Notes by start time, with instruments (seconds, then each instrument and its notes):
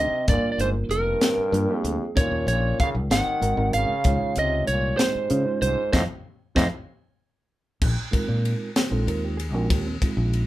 Already playing: trombone C3, reed electric piano F#3 C4 D4 D#4 C5
0.00 lead electric guitar D#5
0.11 muted fingered electric bass stroke
0.27 fingered electric bass G1, trombone A#2, reed electric piano G3 A#3 D4 F4 A#4, lead electric guitar D5, kick, closed hi-hat
0.42 muted fingered electric bass stroke
0.52 trombone A#2, lead electric guitar D5
0.58 fingered electric bass G1, trombone G#2, lead electric guitar C5, closed hi-hat
0.89 fingered electric bass F1, trombone G2, lead electric guitar A#4, closed hi-hat
1.21 snare, closed hi-hat
1.37 muted fingered electric bass stroke
1.52 fingered electric bass G2, reed electric piano G3 A#3 D4 F4 A#4, closed hi-hat
1.69 reed electric piano G3 A#3 D4 F4 G4
1.74 trombone F2
1.79 lead electric guitar G#4
1.84 fingered electric bass D2, closed hi-hat
2.15 fingered electric bass D#2, trombone A#2, reed electric piano F#3 C#4 D#4 F4 A#4, lead electric guitar C#5, kick, closed hi-hat
2.32 fingered electric bass D#2
2.47 fingered electric bass A#1, lead electric guitar C#5, closed hi-hat
2.51 trombone A#2
2.79 trombone C#3, lead electric guitar F5, muted fingered electric bass stroke, kick, closed hi-hat
2.95 fingered electric bass C#2
3.10 fingered electric bass G#1, trombone D#3, lead electric guitar F#5, snare, closed hi-hat
3.26 muted fingered electric bass stroke
3.41 fingered electric bass G#1, reed electric piano G#3 C4 D#4 F#4 A#4, closed hi-hat
3.56 fingered electric bass G#1, reed electric piano G#3 C4 D#4 F#4 A#4
3.73 fingered electric bass G#1, trombone C#3, lead electric guitar F5, closed hi-hat
4.04 fingered electric bass C#2, reed electric piano G#3 D#4 F4 C5 C#5, kick, closed hi-hat
4.22 muted fingered electric bass stroke
4.36 fingered electric bass C#2, trombone C3, lead electric guitar D#5, closed hi-hat
4.67 fingered electric bass C2, trombone A#2, lead electric guitar C#5, closed hi-hat
4.97 lead electric guitar C5, snare, closed hi-hat
5.03 trombone G#2
5.15 muted fingered electric bass stroke
5.29 fingered electric bass C#3, reed electric piano G#3 C#4 D#4 F4 C5, closed hi-hat
5.45 reed electric piano G#3 C#4 D#4 F4 C5
5.62 fingered electric bass C2, trombone G#2, lead electric guitar C5, closed hi-hat
5.93 fingered electric bass F2, trombone A2, reed electric piano C4 D#4 F4, lead electric guitar C5 D#5 F5, kick, snare
6.55 fingered electric bass F2, trombone A2, reed electric piano C4 D#4 F4, lead electric guitar C5 D#5 F5, kick, snare
7.82 fingered electric bass A#1, kick, crash
8.11 reed electric piano G#3 C4 D#4 F4 A#4, muted fingered electric bass stroke, kick, ride
8.28 fingered electric bass A#2
8.45 ride
8.76 snare, ride
8.90 fingered electric bass A#1, reed electric piano G#3 C4 D#4 F4 A4 C5
9.07 fingered electric bass D#2, reed electric piano A#4, ride
9.25 reed electric piano G4
9.37 reed electric piano G#4, ride
9.54 fingered electric bass A#1, reed electric piano G#3 C4 D#4 F4 F#4 A#4
9.70 fingered electric bass D#2, reed electric piano G4, kick, ride
9.86 reed electric piano C4
10.01 reed electric piano G#3 C4 D#4 F4 G#4, kick, ride
10.17 fingered electric bass A#1
10.33 ride